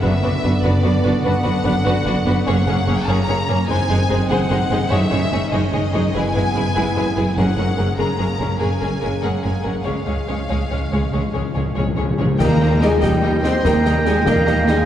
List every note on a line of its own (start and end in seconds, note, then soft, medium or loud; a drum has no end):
0.02 0.11 F#1 medium
0.02 0.10 F#2 medium
0.02 2.43 D3 medium
0.02 2.47 B3 medium
0.02 0.11 B3 medium
0.02 0.11 D4 medium
0.02 0.10 F#4 medium
0.02 0.10 B4 medium
0.02 0.62 E5 medium
0.23 0.31 F#1 medium
0.23 0.31 F#2 medium
0.23 0.32 B3 medium
0.23 0.32 D4 medium
0.23 0.31 F#4 medium
0.23 0.31 B4 medium
0.44 0.52 F#1 medium
0.44 0.52 F#2 medium
0.44 0.52 B3 medium
0.44 0.52 D4 medium
0.44 0.52 F#4 medium
0.44 0.52 B4 medium
0.63 0.72 F#1 medium
0.63 0.72 F#2 medium
0.63 0.72 B3 medium
0.63 0.72 D4 medium
0.63 0.72 F#4 medium
0.63 0.71 B4 medium
0.63 1.24 D5 medium
0.84 0.92 F#1 medium
0.84 0.92 F#2 medium
0.84 0.93 B3 medium
0.84 0.93 D4 medium
0.84 0.92 F#4 medium
0.84 0.92 B4 medium
1.04 1.13 F#1 medium
1.04 1.12 F#2 medium
1.04 1.13 B3 medium
1.04 1.13 D4 medium
1.04 1.12 F#4 medium
1.04 1.12 B4 medium
1.24 1.33 F#1 medium
1.24 1.32 F#2 medium
1.24 1.33 B3 medium
1.24 1.33 D4 medium
1.24 1.33 F#4 medium
1.24 1.33 B4 medium
1.24 2.44 F#5 loud
1.44 1.54 F#1 medium
1.44 1.53 F#2 medium
1.44 1.53 B3 medium
1.44 1.53 D4 medium
1.44 1.52 F#4 medium
1.44 1.52 B4 medium
1.64 1.74 F#1 medium
1.64 1.73 F#2 medium
1.64 1.74 B3 medium
1.64 1.74 D4 medium
1.64 1.72 F#4 medium
1.64 1.72 B4 medium
1.85 1.94 F#1 medium
1.85 1.93 F#2 medium
1.85 1.93 B3 medium
1.85 1.93 D4 medium
1.85 1.93 F#4 medium
1.85 1.94 B4 medium
2.05 2.14 F#1 medium
2.05 2.14 F#2 medium
2.05 2.13 B3 medium
2.05 2.13 D4 medium
2.05 2.13 F#4 medium
2.05 2.13 B4 medium
2.26 2.35 F#1 medium
2.26 2.35 F#2 medium
2.26 2.34 B3 medium
2.26 2.34 D4 medium
2.26 2.35 F#4 medium
2.26 2.34 B4 medium
2.46 2.55 F#1 medium
2.46 2.55 F#2 medium
2.46 3.52 C#3 medium
2.46 2.55 A#3 medium
2.46 3.52 A#3 medium
2.46 2.54 C#4 medium
2.46 2.55 G#4 medium
2.46 2.55 C#5 medium
2.46 3.07 F#5 loud
2.67 2.76 F#1 medium
2.67 2.75 F#2 medium
2.67 2.75 A#3 medium
2.67 2.75 C#4 medium
2.67 2.76 G#4 medium
2.67 2.76 C#5 medium
2.87 2.97 F#1 medium
2.87 2.96 F#2 medium
2.87 2.96 A#3 medium
2.87 2.96 C#4 medium
2.87 2.95 G#4 medium
2.87 2.95 C#5 medium
3.07 3.17 F#1 medium
3.07 3.17 F#2 medium
3.07 3.16 A#3 medium
3.07 3.17 C#4 medium
3.07 3.16 G#4 medium
3.07 3.17 C#5 medium
3.07 3.69 A#5 loud
3.29 3.37 F#1 medium
3.29 3.37 F#2 medium
3.29 3.37 A#3 medium
3.29 3.37 C#4 medium
3.29 3.37 G#4 medium
3.29 3.37 C#5 medium
3.49 3.58 F#1 medium
3.49 3.57 F#2 medium
3.49 3.57 A#3 medium
3.49 3.57 C#4 medium
3.49 3.57 G#4 medium
3.49 3.57 C#5 medium
3.69 3.78 F#1 medium
3.69 3.77 F#2 medium
3.69 6.11 D#3 medium
3.69 3.77 G#3 medium
3.69 4.89 C4 medium
3.69 3.77 D#4 medium
3.69 3.77 G#4 medium
3.69 3.77 C5 medium
3.69 4.29 G#5 loud
3.89 3.98 F#1 medium
3.89 3.97 F#2 medium
3.89 3.97 G#3 medium
3.89 3.97 D#4 medium
3.89 3.97 G#4 medium
3.89 3.98 C5 medium
4.10 4.19 F#1 medium
4.10 4.18 F#2 medium
4.10 4.18 G#3 medium
4.10 4.18 D#4 medium
4.10 4.18 G#4 medium
4.10 4.19 C5 medium
4.30 4.39 F#1 medium
4.30 4.38 F#2 medium
4.30 4.38 G#3 medium
4.30 4.38 D#4 medium
4.30 4.39 G#4 medium
4.30 4.39 C5 medium
4.30 4.90 F#5 loud
4.51 4.60 F#1 medium
4.51 4.59 F#2 medium
4.51 4.59 G#3 medium
4.51 4.59 D#4 medium
4.51 4.59 G#4 medium
4.51 4.59 C5 medium
4.70 4.80 F#1 medium
4.70 4.79 F#2 medium
4.70 4.79 G#3 medium
4.70 4.80 D#4 medium
4.70 4.79 G#4 medium
4.70 4.78 C5 medium
4.91 5.00 F#1 medium
4.91 5.00 F#2 medium
4.91 5.48 F#2 medium
4.91 5.00 G#3 medium
4.91 6.14 C#4 medium
4.91 5.00 D#4 medium
4.91 4.99 G#4 medium
4.91 4.99 C#5 medium
4.91 5.52 E5 loud
5.10 5.21 F#1 medium
5.10 5.20 F#2 medium
5.10 5.20 G#3 medium
5.10 5.20 D#4 medium
5.10 5.18 G#4 medium
5.10 5.19 C#5 medium
5.32 5.40 F#1 medium
5.32 5.40 F#2 medium
5.32 5.41 G#3 medium
5.32 5.41 D#4 medium
5.32 5.41 G#4 medium
5.32 5.41 C#5 medium
5.52 5.61 F#1 medium
5.52 5.60 F#2 medium
5.52 5.62 G#3 medium
5.52 5.61 D#4 medium
5.52 5.60 G#4 medium
5.52 5.60 C#5 medium
5.52 6.13 D#5 medium
5.72 5.82 F#1 medium
5.72 5.81 F#2 medium
5.72 5.82 G#3 medium
5.72 5.82 D#4 medium
5.72 5.80 G#4 medium
5.72 5.81 C#5 medium
5.94 6.03 F#1 medium
5.94 6.02 F#2 medium
5.94 6.02 G#3 medium
5.94 6.02 D#4 medium
5.94 6.02 G#4 medium
5.94 6.02 C#5 medium
6.14 6.24 F#1 medium
6.14 6.23 F#2 medium
6.14 7.38 E3 medium
6.14 6.23 G#3 medium
6.14 7.38 B3 medium
6.14 6.23 E4 medium
6.14 6.22 G#4 medium
6.14 6.23 B4 medium
6.14 7.38 G#5 loud
6.35 6.44 F#1 medium
6.35 6.43 F#2 medium
6.35 6.43 G#3 medium
6.35 6.43 E4 medium
6.35 6.43 G#4 medium
6.35 6.43 B4 medium
6.55 6.64 F#1 medium
6.55 6.64 F#2 medium
6.55 6.63 G#3 medium
6.55 6.63 E4 medium
6.55 6.63 G#4 medium
6.55 6.63 B4 medium
6.75 6.85 F#1 medium
6.75 6.84 F#2 medium
6.75 6.84 G#3 medium
6.75 6.84 E4 medium
6.75 6.83 G#4 medium
6.75 6.83 B4 medium
6.96 7.04 F#1 medium
6.96 7.05 F#2 medium
6.96 7.04 G#3 medium
6.96 7.05 E4 medium
6.96 7.05 G#4 medium
6.96 7.04 B4 medium
7.17 7.25 F#1 medium
7.17 7.25 F#2 medium
7.17 7.25 G#3 medium
7.17 7.25 E4 medium
7.17 7.25 G#4 medium
7.17 7.25 B4 medium
7.37 7.45 F#1 medium
7.37 7.45 F#2 medium
7.37 7.95 F#2 medium
7.37 12.16 C#3 medium
7.37 7.46 G#3 medium
7.37 9.83 A#3 medium
7.37 7.46 C#4 medium
7.37 7.45 G#4 medium
7.37 7.46 A#4 medium
7.37 7.98 F#5 loud
7.57 7.66 F#1 medium
7.57 7.67 F#2 medium
7.57 7.66 G#3 medium
7.57 7.66 C#4 soft
7.57 7.65 G#4 medium
7.57 7.65 A#4 soft
7.78 7.87 F#1 medium
7.78 7.86 F#2 medium
7.78 7.87 G#3 soft
7.78 7.87 C#4 medium
7.78 7.86 G#4 soft
7.78 7.86 A#4 soft
7.98 8.07 F#1 medium
7.98 8.07 F#2 medium
7.98 8.07 G#3 medium
7.98 8.07 C#4 medium
7.98 8.07 G#4 medium
7.98 8.06 A#4 medium
7.98 8.59 A#5 medium
8.18 8.28 F#1 medium
8.18 8.27 F#2 medium
8.18 8.28 G#3 medium
8.18 8.28 C#4 soft
8.18 8.26 G#4 soft
8.18 8.27 A#4 soft
8.39 8.49 F#1 medium
8.39 8.48 F#2 medium
8.39 8.48 G#3 soft
8.39 8.49 C#4 medium
8.39 8.47 G#4 medium
8.39 8.47 A#4 medium
8.59 8.69 F#1 medium
8.59 8.69 F#2 medium
8.59 8.69 G#3 soft
8.59 8.69 C#4 soft
8.59 8.67 G#4 medium
8.59 8.67 A#4 medium
8.59 9.22 G#5 medium
8.81 8.90 F#1 soft
8.81 8.90 F#2 soft
8.81 8.90 G#3 soft
8.81 8.90 C#4 soft
8.81 8.89 G#4 soft
8.81 8.89 A#4 soft
9.01 9.11 F#1 medium
9.01 9.10 F#2 medium
9.01 9.11 G#3 soft
9.01 9.11 C#4 soft
9.01 9.09 G#4 soft
9.01 9.09 A#4 soft
9.22 9.32 F#1 medium
9.22 9.31 F#2 medium
9.22 9.32 G#3 soft
9.22 9.32 C#4 soft
9.22 9.30 G#4 medium
9.22 9.30 A#4 medium
9.22 9.44 F#5 medium
9.43 9.52 F#1 medium
9.43 9.52 F#2 soft
9.43 9.53 G#3 soft
9.43 9.53 C#4 soft
9.43 9.51 G#4 soft
9.43 9.51 A#4 soft
9.43 9.65 G#5 medium
9.64 9.74 F#1 medium
9.64 9.73 F#2 medium
9.64 9.73 G#3 soft
9.64 9.73 C#4 soft
9.64 9.72 G#4 soft
9.64 9.72 A#4 soft
9.64 9.86 F#5 medium
9.85 9.94 C#2 medium
9.85 9.95 C#2 medium
9.85 9.93 C#3 soft
9.85 9.94 G#3 medium
9.85 12.19 G#3 soft
9.85 9.94 C#4 soft
9.85 9.93 G#4 soft
9.85 9.93 C#5 soft
9.85 11.77 F5 medium
9.94 10.01 C#3 soft
10.02 10.09 C#3 soft
10.07 10.15 C#2 medium
10.07 10.16 C#2 soft
10.07 10.16 G#3 soft
10.07 10.16 C#4 soft
10.07 10.15 G#4 soft
10.07 10.15 C#5 soft
10.18 10.24 C#3 soft
10.26 10.37 C#2 soft
10.26 10.32 C#3 soft
10.26 10.37 G#3 soft
10.26 10.37 C#4 soft
10.26 10.36 G#4 soft
10.26 10.37 C#5 soft
10.33 10.40 C#3 soft
10.41 10.47 C#3 soft
10.49 10.58 C#2 medium
10.49 10.55 C#3 soft
10.49 10.57 G#3 soft
10.49 10.57 C#4 soft
10.49 10.57 G#4 medium
10.49 10.57 C#5 soft
10.56 10.63 C#3 soft
10.64 10.71 C#3 soft
10.71 10.79 C#2 soft
10.71 10.78 C#3 soft
10.71 10.80 G#3 soft
10.71 10.79 C#4 soft
10.71 10.79 G#4 soft
10.71 10.79 C#5 soft
10.79 10.86 C#3 soft
10.87 10.94 C#3 soft
10.92 11.00 C#2 soft
10.92 11.01 C#2 medium
10.92 11.02 C#3 soft
10.92 11.01 G#3 soft
10.92 11.01 C#4 soft
10.92 11.00 G#4 soft
10.92 11.00 C#5 soft
11.04 11.09 C#3 soft
11.10 11.21 C#2 medium
11.10 11.22 C#2 medium
11.10 11.17 C#3 medium
11.10 11.22 G#3 soft
11.10 11.22 C#4 soft
11.10 11.22 G#4 soft
11.10 11.21 C#5 soft
11.19 11.25 C#3 medium
11.26 11.32 C#3 medium
11.34 11.42 C#2 soft
11.34 11.43 C#2 soft
11.34 11.40 C#3 medium
11.34 11.43 G#3 soft
11.34 11.43 C#4 soft
11.34 11.42 G#4 soft
11.34 11.42 C#5 soft
11.41 11.48 C#3 medium
11.49 11.56 C#3 medium
11.55 11.64 C#2 soft
11.55 11.62 C#3 medium
11.55 11.64 G#3 soft
11.55 11.64 C#4 soft
11.55 11.63 G#4 soft
11.55 11.63 C#5 soft
11.64 11.70 C#3 medium
11.71 11.78 C#3 medium
11.76 11.85 C#2 soft
11.76 11.86 C#2 soft
11.76 11.85 C#3 medium
11.76 11.85 G#3 soft
11.76 11.85 C#4 soft
11.76 11.84 G#4 medium
11.76 11.84 C#5 soft
11.86 11.93 C#3 medium
11.94 12.06 C#2 soft
11.94 12.01 C#3 medium
11.94 12.06 G#3 soft
11.94 12.05 G#4 soft
11.94 12.05 C#5 soft
11.99 12.07 C#2 soft
11.99 12.09 C#3 medium
11.99 12.07 C#4 soft
12.10 12.17 C#3 medium
12.18 12.27 C#2 soft
12.18 12.28 C#2 soft
12.18 12.24 C#3 medium
12.18 12.27 G#3 soft
12.18 12.27 C#4 soft
12.18 12.27 G#4 soft
12.18 12.27 C#5 soft
12.25 12.32 C#3 loud
12.39 12.96 D#2 medium
12.39 12.99 D#3 medium
12.39 12.48 G3 medium
12.39 12.79 A#3 loud
12.39 12.49 D#4 medium
12.39 12.80 A#4 loud
12.39 12.47 D#5 medium
12.39 14.85 D#5 medium
12.39 12.47 G5 medium
12.39 14.85 G5 medium
12.39 12.79 A#5 medium
12.39 concert bass drum medium
12.39 snare medium
12.39 crash medium
12.39 tam-tam medium
12.61 12.69 G3 medium
12.61 12.70 D#4 medium
12.61 12.69 D#5 medium
12.61 12.69 G5 medium
12.81 12.89 D#3 medium
12.81 12.89 G3 medium
12.81 12.91 G3 medium
12.81 13.03 G#3 medium
12.81 12.91 D#4 medium
12.81 13.02 G#4 loud
12.81 12.90 D#5 medium
12.81 12.90 G5 medium
12.81 13.03 G#5 medium
12.81 snare soft
13.01 13.58 D#2 medium
13.01 13.43 G3 medium
13.01 13.10 G3 medium
13.01 13.10 D#4 medium
13.01 13.44 G4 medium
13.01 13.09 D#5 medium
13.01 13.10 G5 medium
13.01 13.43 G5 medium
13.01 concert bass drum medium
13.01 snare medium
13.23 13.31 G3 medium
13.23 13.31 D#4 medium
13.23 13.32 D#5 medium
13.23 13.32 G5 medium
13.43 13.51 D#3 medium
13.43 13.52 G3 medium
13.43 13.52 C4 medium
13.43 13.52 D#4 medium
13.43 13.64 C5 medium
13.43 13.52 D#5 medium
13.43 13.53 G5 medium
13.43 13.65 C6 medium
13.43 snare soft
13.64 14.19 D#2 medium
13.64 13.73 G3 medium
13.64 14.05 A#3 medium
13.64 13.73 D#4 medium
13.64 14.06 A#4 medium
13.64 13.74 D#5 medium
13.64 14.28 G5 medium
13.64 13.74 G5 medium
13.64 14.06 A#5 medium
13.64 concert bass drum medium
13.64 snare medium
13.85 13.94 G3 medium
13.85 13.94 D#4 medium
13.85 13.94 D#5 medium
13.85 13.94 G5 medium
13.85 snare medium
14.05 14.14 D#3 medium
14.05 14.14 G3 medium
14.05 14.26 G#3 medium
14.05 14.14 D#4 medium
14.05 14.27 G#4 loud
14.05 14.14 D#5 medium
14.05 14.15 G5 medium
14.05 14.26 G#5 medium
14.05 snare soft
14.26 14.81 D#2 medium
14.26 14.34 G3 medium
14.26 14.67 A#3 medium
14.26 14.35 D#4 medium
14.26 14.67 A#4 loud
14.26 14.35 D#5 medium
14.26 14.85 F5 medium
14.26 14.35 G5 medium
14.26 14.68 A#5 medium
14.26 concert bass drum medium
14.26 snare medium
14.47 14.56 G3 medium
14.47 14.55 D#4 medium
14.47 14.55 D#5 medium
14.47 14.55 G5 medium
14.47 snare medium
14.67 14.75 D#3 medium
14.67 14.76 G3 medium
14.67 14.75 G3 medium
14.67 14.85 G#3 medium
14.67 14.76 D#4 medium
14.67 14.85 G#4 loud
14.67 14.76 D#5 medium
14.67 14.76 G5 medium
14.67 14.85 G#5 medium
14.67 snare soft